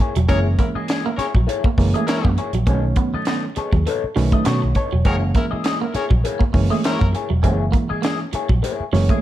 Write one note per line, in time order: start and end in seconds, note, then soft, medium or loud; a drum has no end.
0.00 0.12 A#3 medium
0.00 0.13 E4 medium
0.00 0.13 G#4 medium
0.00 0.13 C#5 medium
0.00 closed hi-hat medium
0.16 0.27 E1 medium
0.16 0.26 F#3 medium
0.16 muted clean electric guitar stroke medium
0.16 closed hi-hat medium
0.28 0.55 F#1 loud
0.28 1.09 E3 medium
0.28 1.09 G#3 medium
0.28 1.09 A#3 medium
0.28 0.46 A#3 medium
0.28 1.09 C#4 medium
0.28 0.42 C#4 medium
0.28 0.46 E4 medium
0.28 0.38 G#4 loud
0.28 0.46 G#4 loud
0.28 0.38 A#4 loud
0.28 0.38 C#5 loud
0.28 0.47 C#5 loud
0.28 kick loud
0.28 closed hi-hat loud
0.58 0.72 A#3 medium
0.58 0.68 C#4 medium
0.58 0.68 E4 medium
0.58 0.68 A#4 medium
0.58 muted clean electric guitar stroke soft
0.58 kick loud
0.58 closed hi-hat medium
0.75 0.87 A#3 medium
0.75 0.86 E4 medium
0.75 0.86 G#4 medium
0.75 0.86 D#5 medium
0.75 muted picked electric bass stroke soft
0.75 muted clean electric guitar stroke soft
0.88 1.05 A#3 medium
0.88 1.05 E4 medium
0.88 1.05 G#4 medium
0.88 1.05 D#5 loud
0.88 snare loud
0.88 closed hi-hat loud
1.04 1.16 A#3 medium
1.04 1.15 C#4 medium
1.04 1.15 E4 medium
1.04 1.15 A#4 medium
1.16 1.31 A#3 medium
1.16 1.31 E4 medium
1.16 1.27 G#4 medium
1.16 1.31 G#4 medium
1.16 1.27 A#4 medium
1.16 1.27 C#5 medium
1.16 1.32 C#5 medium
1.16 muted picked electric bass stroke medium
1.16 muted clean electric guitar stroke soft
1.16 snare soft
1.16 closed hi-hat medium
1.35 1.46 A#1 medium
1.35 1.46 F#3 medium
1.35 muted clean electric guitar stroke medium
1.35 kick medium
1.47 1.64 A#3 medium
1.47 1.65 E4 medium
1.47 1.65 G#4 medium
1.47 1.65 C#5 loud
1.47 closed hi-hat loud
1.64 1.75 A#3 medium
1.64 muted picked electric bass stroke soft
1.64 kick loud
1.78 1.92 F#1 loud
1.78 2.37 E3 medium
1.78 2.37 G#3 medium
1.78 2.37 A#3 medium
1.78 2.37 C#4 loud
1.78 muted clean electric guitar stroke soft
1.78 kick loud
1.78 snare soft
1.78 open hi-hat medium
1.94 2.05 A3 medium
1.94 2.05 A#3 medium
1.94 2.05 E4 medium
1.94 2.05 G#4 medium
1.94 2.04 D#5 medium
1.94 closed hi-hat medium
2.06 2.24 A#3 medium
2.06 2.31 C#4 loud
2.06 2.31 E4 loud
2.06 2.23 E4 loud
2.06 2.23 G#4 medium
2.06 2.31 A#4 loud
2.06 2.22 C#5 loud
2.06 snare loud
2.06 closed hi-hat loud
2.23 2.36 F#2 loud
2.23 2.35 A#3 medium
2.23 muted clean electric guitar stroke soft
2.23 kick loud
2.38 2.50 A#3 medium
2.38 2.51 E4 medium
2.38 2.51 G#4 medium
2.38 2.51 C#5 medium
2.38 muted clean electric guitar stroke soft
2.38 closed hi-hat medium
2.53 2.65 A#1 medium
2.53 2.64 F#3 medium
2.53 muted clean electric guitar stroke medium
2.53 closed hi-hat medium
2.67 2.93 B1 loud
2.67 3.48 D#3 medium
2.67 3.48 F#3 medium
2.67 3.48 A3 medium
2.67 2.83 B3 medium
2.67 2.75 C4 medium
2.67 2.80 C#4 loud
2.67 2.84 D#4 medium
2.67 2.84 A4 medium
2.67 2.85 C#5 loud
2.67 kick loud
2.67 closed hi-hat loud
2.74 3.51 C#4 loud
2.96 3.10 B3 medium
2.96 muted clean electric guitar stroke soft
2.96 kick loud
2.96 closed hi-hat medium
3.14 3.25 B3 medium
3.14 3.25 D#4 medium
3.14 3.24 A4 medium
3.14 3.24 D#5 medium
3.14 muted clean electric guitar stroke soft
3.14 muted picked electric bass stroke soft
3.25 3.43 B3 medium
3.25 3.39 B3 medium
3.25 3.44 D#4 medium
3.25 3.44 A4 medium
3.25 3.44 D#5 loud
3.25 snare loud
3.25 closed hi-hat loud
3.45 muted clean electric guitar stroke soft
3.56 3.69 B3 medium
3.56 3.70 D#4 medium
3.56 3.84 G#4 medium
3.56 3.70 A4 medium
3.56 3.70 C#5 medium
3.56 muted clean electric guitar stroke soft
3.56 muted picked electric bass stroke medium
3.56 closed hi-hat medium
3.72 3.84 D#2 medium
3.72 3.83 F#3 medium
3.72 muted clean electric guitar stroke medium
3.72 kick medium
3.86 4.03 B3 medium
3.86 4.04 D#4 medium
3.86 4.14 A4 medium
3.86 4.04 A4 loud
3.86 4.04 C#5 medium
3.86 muted clean electric guitar stroke soft
3.86 closed hi-hat loud
4.04 muted picked electric bass stroke soft
4.16 4.31 B1 loud
4.16 4.75 D#3 loud
4.16 4.28 F#3 medium
4.16 4.75 F#3 medium
4.16 4.75 A3 medium
4.16 4.75 C#4 loud
4.16 4.44 B4 medium
4.16 muted clean electric guitar stroke soft
4.16 snare soft
4.16 open hi-hat medium
4.32 4.42 A3 medium
4.32 4.44 B3 medium
4.32 4.44 D#4 medium
4.32 4.44 A4 medium
4.32 4.43 D#5 medium
4.32 kick medium
4.32 closed hi-hat soft
4.45 4.61 B2 loud
4.45 4.58 B3 medium
4.45 4.62 B3 medium
4.45 4.62 D#4 loud
4.45 4.62 A4 loud
4.45 4.73 C#5 medium
4.45 4.61 C#5 loud
4.45 snare loud
4.45 closed hi-hat loud
4.62 4.74 B1 medium
4.62 muted clean electric guitar stroke medium
4.75 4.88 B3 medium
4.75 4.89 D#4 medium
4.75 4.89 A4 medium
4.75 5.03 C#5 medium
4.75 4.89 C#5 medium
4.75 kick medium
4.75 closed hi-hat medium
4.92 5.05 E1 medium
4.92 5.02 F#3 medium
4.92 muted clean electric guitar stroke soft
5.05 5.31 F#1 loud
5.05 5.86 E3 medium
5.05 5.86 G#3 medium
5.05 5.22 A#3 medium
5.05 5.86 A#3 medium
5.05 5.86 C#4 medium
5.05 5.18 C#4 medium
5.05 5.22 E4 loud
5.05 5.15 G#4 loud
5.05 5.22 G#4 loud
5.05 5.15 A#4 loud
5.05 5.16 C#5 loud
5.05 5.23 C#5 loud
5.05 kick loud
5.05 closed hi-hat loud
5.35 5.48 A#3 medium
5.35 5.45 C#4 medium
5.35 5.45 E4 medium
5.35 5.45 A#4 medium
5.35 muted clean electric guitar stroke soft
5.35 kick loud
5.35 closed hi-hat medium
5.51 5.62 A#3 medium
5.51 5.62 E4 medium
5.51 5.62 G#4 medium
5.51 5.61 D#5 medium
5.51 muted clean electric guitar stroke soft
5.51 muted picked electric bass stroke soft
5.64 5.81 A#3 medium
5.64 5.81 E4 loud
5.64 5.80 G#4 medium
5.64 5.80 D#5 loud
5.64 snare loud
5.64 closed hi-hat loud
5.80 5.91 A#3 medium
5.80 5.92 C#4 medium
5.80 5.92 E4 medium
5.80 5.92 A#4 medium
5.80 muted clean electric guitar stroke soft
5.94 6.07 A#3 medium
5.94 6.08 E4 medium
5.94 6.05 G#4 medium
5.94 6.08 G#4 medium
5.94 6.05 A#4 medium
5.94 6.05 C#5 loud
5.94 6.08 C#5 medium
5.94 muted clean electric guitar stroke soft
5.94 muted picked electric bass stroke medium
5.94 snare soft
5.94 closed hi-hat medium
6.10 6.22 A#1 loud
6.10 6.21 F#3 medium
6.10 kick loud
6.24 6.41 A#3 medium
6.24 6.41 E4 medium
6.24 6.41 G#4 medium
6.24 6.42 C#5 medium
6.24 closed hi-hat loud
6.39 6.50 A#3 medium
6.39 muted picked electric bass stroke soft
6.39 kick loud
6.54 6.69 F#1 medium
6.54 7.14 E3 medium
6.54 7.14 G#3 medium
6.54 7.14 A#3 medium
6.54 7.14 C#4 loud
6.54 muted clean electric guitar stroke soft
6.54 kick loud
6.54 open hi-hat medium
6.70 6.81 A3 medium
6.70 6.82 A#3 soft
6.70 6.82 E4 medium
6.70 6.81 G#4 medium
6.70 6.81 D#5 medium
6.84 7.04 A#3 medium
6.84 7.08 C#4 loud
6.84 7.08 E4 loud
6.84 7.00 E4 loud
6.84 7.01 G#4 medium
6.84 7.08 A#4 loud
6.84 7.00 C#5 loud
6.84 snare loud
6.84 closed hi-hat loud
6.99 7.12 F#2 loud
6.99 7.10 A#3 medium
6.99 muted clean electric guitar stroke soft
6.99 kick loud
7.13 7.27 A#3 medium
7.13 7.27 E4 medium
7.13 7.28 G#4 medium
7.13 7.28 C#5 medium
7.13 muted clean electric guitar stroke soft
7.13 closed hi-hat medium
7.30 7.44 E1 medium
7.30 7.40 F#3 medium
7.30 muted clean electric guitar stroke medium
7.43 7.69 F#1 loud
7.43 8.24 E3 medium
7.43 8.24 G#3 medium
7.43 7.63 A#3 medium
7.43 8.24 A#3 medium
7.43 7.56 C#4 medium
7.43 7.63 E4 medium
7.43 8.24 E4 medium
7.43 7.64 G#4 medium
7.43 7.64 C#5 medium
7.43 kick loud
7.43 closed hi-hat loud
7.72 7.85 A#3 medium
7.72 muted clean electric guitar stroke soft
7.72 kick loud
7.72 closed hi-hat medium
7.89 8.01 A#3 medium
7.89 8.01 E4 medium
7.89 8.00 G#4 medium
7.89 8.00 D#5 medium
7.89 muted clean electric guitar stroke soft
7.89 muted picked electric bass stroke soft
8.02 8.15 A#3 medium
8.02 8.20 A#3 medium
8.02 8.20 E4 medium
8.02 8.20 G#4 loud
8.02 8.20 D#5 medium
8.02 snare loud
8.02 closed hi-hat medium
8.20 muted clean electric guitar stroke medium
8.33 8.46 A#3 medium
8.33 8.47 E4 medium
8.33 8.47 G#4 medium
8.33 8.47 C#5 medium
8.33 muted clean electric guitar stroke medium
8.33 muted picked electric bass stroke medium
8.33 closed hi-hat medium
8.49 8.61 A#1 medium
8.49 8.60 F#3 medium
8.49 kick medium
8.63 8.83 A#3 medium
8.63 8.83 E4 medium
8.63 8.83 G#4 medium
8.63 8.83 C#5 medium
8.63 muted clean electric guitar stroke soft
8.63 closed hi-hat loud
8.80 muted picked electric bass stroke soft
8.93 9.07 F#1 loud
8.93 9.21 E3 medium
8.93 9.05 F#3 medium
8.93 9.21 G#3 medium
8.93 9.21 A#3 medium
8.93 9.21 C#4 loud
8.93 9.21 C#5 medium
8.93 muted clean electric guitar stroke soft
8.93 snare soft
8.93 open hi-hat medium
9.09 9.20 A3 medium
9.09 9.21 A#3 medium
9.09 9.21 E4 medium
9.09 9.20 G#4 medium
9.09 9.20 D#5 medium
9.09 kick medium
9.09 closed hi-hat soft